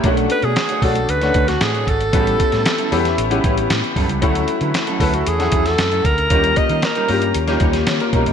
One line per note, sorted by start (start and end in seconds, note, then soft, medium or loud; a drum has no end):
0.00 0.26 B1 medium
0.00 0.61 A3 medium
0.00 0.17 G4 soft
0.00 0.16 C#5 medium
0.00 kick loud
0.00 closed hi-hat medium
0.05 0.25 A3 medium
0.05 0.61 C#4 medium
0.05 0.61 D4 medium
0.05 0.18 D4 medium
0.05 0.62 F#4 loud
0.05 0.17 F#4 medium
0.05 0.17 C#5 medium
0.17 muted clean electric guitar stroke soft
0.17 closed hi-hat medium
0.30 0.46 B4 loud
0.30 muted clean electric guitar stroke soft
0.30 closed hi-hat medium
0.42 0.54 B2 medium
0.42 0.55 A3 medium
0.42 0.56 D4 medium
0.42 0.56 F#4 medium
0.42 0.86 G#4 loud
0.42 0.57 D5 medium
0.42 closed hi-hat soft
0.56 snare loud
0.56 closed hi-hat medium
0.69 0.81 A3 medium
0.69 0.82 D4 medium
0.69 0.82 F#4 medium
0.69 0.83 C#5 medium
0.69 closed hi-hat medium
0.82 1.04 B1 medium
0.82 1.11 A3 medium
0.82 0.98 A3 medium
0.82 1.11 C#4 medium
0.82 1.11 D4 medium
0.82 0.95 D4 medium
0.82 1.11 F#4 medium
0.82 0.95 F#4 medium
0.82 1.11 A4 medium
0.82 0.95 C#5 medium
0.82 kick medium
0.82 open hi-hat medium
0.95 muted clean electric guitar stroke soft
0.95 closed hi-hat medium
1.09 1.31 D2 medium
1.09 1.50 B4 loud
1.09 muted clean electric guitar stroke soft
1.09 closed hi-hat medium
1.21 1.88 A3 medium
1.21 1.33 A3 medium
1.21 1.88 C#4 medium
1.21 1.88 D4 medium
1.21 1.34 D4 medium
1.21 1.34 F#4 medium
1.21 1.88 F#4 medium
1.21 1.35 C#5 medium
1.21 snare soft
1.21 closed hi-hat soft
1.34 1.57 D2 medium
1.34 1.50 A3 medium
1.34 1.48 D4 medium
1.34 1.48 F#4 medium
1.34 1.47 C#5 medium
1.34 kick medium
1.34 closed hi-hat medium
1.48 1.63 F#4 medium
1.48 muted clean electric guitar stroke soft
1.48 snare soft
1.48 closed hi-hat medium
1.61 1.83 A2 medium
1.61 1.90 G#4 medium
1.61 muted clean electric guitar stroke soft
1.61 snare loud
1.61 closed hi-hat medium
1.74 1.86 A3 soft
1.74 1.87 D4 medium
1.74 1.87 F#4 medium
1.74 1.88 C#5 medium
1.74 closed hi-hat soft
1.87 2.09 G#1 medium
1.87 3.45 A4 loud
1.87 muted clean electric guitar stroke soft
1.87 kick medium
1.87 closed hi-hat medium
2.00 muted clean electric guitar stroke soft
2.00 closed hi-hat medium
2.13 2.35 A1 medium
2.13 2.33 G3 medium
2.13 2.70 B3 medium
2.13 2.70 C#4 medium
2.13 2.27 C#4 medium
2.13 2.70 E4 medium
2.13 2.26 E4 medium
2.13 2.20 F#4 medium
2.13 2.26 A4 medium
2.13 kick loud
2.13 closed hi-hat medium
2.20 2.73 G4 medium
2.27 muted clean electric guitar stroke soft
2.27 closed hi-hat medium
2.40 muted clean electric guitar stroke soft
2.40 kick medium
2.40 closed hi-hat medium
2.52 2.64 A2 medium
2.52 2.65 G3 medium
2.52 2.65 C#4 medium
2.52 2.66 E4 medium
2.52 2.66 A4 medium
2.52 snare soft
2.52 closed hi-hat soft
2.66 muted clean electric guitar stroke soft
2.66 snare loud
2.66 closed hi-hat medium
2.78 2.91 G3 medium
2.78 2.91 C#4 medium
2.78 2.92 E4 medium
2.78 2.92 A4 medium
2.78 closed hi-hat medium
2.92 3.14 E2 medium
2.92 3.07 G3 medium
2.92 3.20 B3 medium
2.92 3.20 C#4 medium
2.92 3.05 C#4 medium
2.92 3.20 E4 medium
2.92 3.04 E4 medium
2.92 3.20 G4 medium
2.92 3.04 A4 medium
2.92 open hi-hat medium
3.05 muted clean electric guitar stroke soft
3.05 snare soft
3.05 closed hi-hat medium
3.18 3.40 A1 medium
3.18 muted clean electric guitar stroke soft
3.18 closed hi-hat medium
3.30 3.43 G3 medium
3.30 3.97 B3 medium
3.30 3.97 C#4 medium
3.30 3.43 C#4 medium
3.30 3.97 E4 medium
3.30 3.44 E4 medium
3.30 3.97 G4 medium
3.30 3.45 A4 medium
3.30 closed hi-hat medium
3.44 3.66 A1 medium
3.44 3.60 G3 medium
3.44 3.57 C#4 medium
3.44 3.57 E4 medium
3.44 3.57 B4 medium
3.44 kick medium
3.44 closed hi-hat medium
3.57 muted clean electric guitar stroke medium
3.57 closed hi-hat medium
3.70 3.81 A2 medium
3.70 muted clean electric guitar stroke soft
3.70 snare loud
3.70 closed hi-hat medium
3.84 muted clean electric guitar stroke soft
3.84 closed hi-hat soft
3.96 4.07 F#2 medium
3.96 4.16 G3 medium
3.96 4.09 C#4 medium
3.96 4.08 E4 medium
3.96 4.08 A4 medium
3.96 kick medium
3.96 open hi-hat medium
4.09 4.20 C#2 medium
4.09 muted clean electric guitar stroke soft
4.09 closed hi-hat medium
4.22 4.44 D2 loud
4.22 4.42 F#3 medium
4.22 4.79 A3 medium
4.22 4.79 C#4 medium
4.22 4.35 C#4 medium
4.22 4.79 E4 medium
4.22 4.35 E4 medium
4.22 4.79 F#4 medium
4.22 4.34 A4 medium
4.22 kick loud
4.22 closed hi-hat medium
4.35 muted clean electric guitar stroke soft
4.35 closed hi-hat medium
4.48 muted clean electric guitar stroke soft
4.48 closed hi-hat medium
4.61 4.72 D3 medium
4.61 4.74 F#3 medium
4.61 4.74 C#4 medium
4.61 4.75 E4 medium
4.61 4.75 B4 medium
4.61 closed hi-hat soft
4.74 muted clean electric guitar stroke soft
4.74 snare medium
4.74 closed hi-hat medium
4.87 5.00 F#3 medium
4.87 5.01 C#4 medium
4.87 5.01 E4 medium
4.87 5.02 A4 medium
4.87 closed hi-hat medium
5.00 5.22 D2 medium
5.00 5.17 F#3 medium
5.00 5.28 A3 medium
5.00 5.29 C#4 medium
5.00 5.14 C#4 medium
5.00 5.29 E4 medium
5.00 5.14 E4 medium
5.00 5.29 A4 medium
5.00 5.13 A4 medium
5.00 5.16 B4 medium
5.00 kick medium
5.00 open hi-hat medium
5.14 5.29 F#4 medium
5.14 muted clean electric guitar stroke soft
5.14 closed hi-hat medium
5.27 5.49 E2 medium
5.27 5.68 G#4 loud
5.27 muted clean electric guitar stroke soft
5.27 closed hi-hat medium
5.39 5.52 F#3 medium
5.39 6.05 A3 medium
5.39 6.05 C#4 medium
5.39 5.53 C#4 medium
5.39 6.06 E4 medium
5.39 5.53 E4 medium
5.39 6.06 F#4 medium
5.39 5.54 A4 medium
5.39 snare soft
5.39 closed hi-hat medium
5.52 5.74 E2 medium
5.52 5.69 F#3 medium
5.52 5.67 C#4 medium
5.52 5.66 E4 medium
5.52 5.66 A4 medium
5.52 kick medium
5.52 closed hi-hat medium
5.66 6.07 A4 medium
5.66 muted clean electric guitar stroke soft
5.66 snare soft
5.66 closed hi-hat medium
5.78 6.01 F#2 medium
5.78 muted clean electric guitar stroke soft
5.78 snare loud
5.78 closed hi-hat medium
5.92 6.04 F#3 medium
5.92 6.04 C#4 medium
5.92 6.05 E4 medium
5.92 6.05 A4 medium
5.92 closed hi-hat soft
6.05 6.27 D2 medium
6.05 6.59 A#4 loud
6.05 muted clean electric guitar stroke soft
6.05 kick medium
6.05 closed hi-hat medium
6.18 muted clean electric guitar stroke soft
6.18 closed hi-hat medium
6.30 6.53 D#2 medium
6.30 6.51 G3 medium
6.30 6.87 A#3 medium
6.30 6.88 C#4 medium
6.30 6.45 C#4 medium
6.30 6.44 D#4 loud
6.30 6.88 F4 medium
6.30 6.88 G4 medium
6.30 6.44 A#4 loud
6.30 kick loud
6.30 closed hi-hat medium
6.44 muted clean electric guitar stroke soft
6.44 closed hi-hat medium
6.56 6.87 D#5 loud
6.56 muted clean electric guitar stroke soft
6.56 kick medium
6.56 closed hi-hat medium
6.69 6.81 D#3 medium
6.69 6.82 G3 medium
6.69 6.83 C#4 medium
6.69 6.83 D#4 medium
6.69 6.84 A#4 medium
6.69 closed hi-hat soft
6.82 7.36 A#4 medium
6.82 snare medium
6.82 closed hi-hat medium
6.95 7.08 G3 medium
6.95 7.09 C#4 medium
6.95 7.10 D#4 medium
6.95 7.10 A#4 medium
6.95 closed hi-hat soft
7.09 7.31 G2 medium
7.09 7.25 G3 medium
7.09 7.37 A#3 medium
7.09 7.37 C#4 medium
7.09 7.23 C#4 medium
7.09 7.23 D#4 medium
7.09 7.37 F4 medium
7.09 7.38 G4 medium
7.09 7.22 A#4 medium
7.09 open hi-hat medium
7.22 muted clean electric guitar stroke soft
7.22 closed hi-hat medium
7.34 7.57 D#2 medium
7.34 muted clean electric guitar stroke soft
7.34 closed hi-hat medium
7.47 7.59 G3 medium
7.47 7.87 A#3 medium
7.47 7.87 C#4 medium
7.47 7.60 C#4 medium
7.47 7.61 D#4 medium
7.47 7.87 F4 medium
7.47 7.87 G4 medium
7.47 7.62 A#4 medium
7.47 snare soft
7.47 closed hi-hat soft
7.60 7.83 D#2 medium
7.60 7.77 G3 medium
7.60 7.74 C#4 medium
7.60 7.73 D#4 medium
7.60 7.74 C#5 medium
7.60 kick medium
7.60 closed hi-hat medium
7.73 muted clean electric guitar stroke soft
7.73 snare soft
7.73 closed hi-hat medium
7.87 7.98 D#3 loud
7.87 8.00 G4 soft
7.87 8.00 C#5 medium
7.87 muted clean electric guitar stroke soft
7.87 snare loud
7.87 closed hi-hat medium
8.00 8.13 F4 medium
8.00 8.13 A#4 medium
8.00 muted clean electric guitar stroke soft
8.00 closed hi-hat soft
8.13 8.24 B2 medium
8.13 8.33 G3 medium
8.13 8.26 C#4 medium
8.13 8.26 C#4 soft
8.13 8.26 D#4 medium
8.13 8.26 G4 medium
8.13 8.25 A#4 medium
8.13 kick medium
8.13 closed hi-hat medium
8.26 8.33 G1 medium
8.26 8.33 A#3 medium
8.26 8.33 D#4 medium
8.26 muted clean electric guitar stroke soft
8.26 closed hi-hat medium